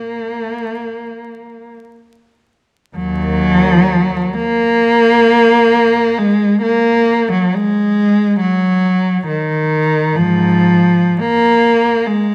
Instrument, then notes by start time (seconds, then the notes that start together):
cello
Already playing: A#3
2.95 D#2 F#3
4.34 A#3
6.18 G#3
6.62 A#3
7.33 F#3
7.55 G#3
8.40 F#3
9.27 D#3
10.16 G#2 F3
11.20 A#3
12.06 G#3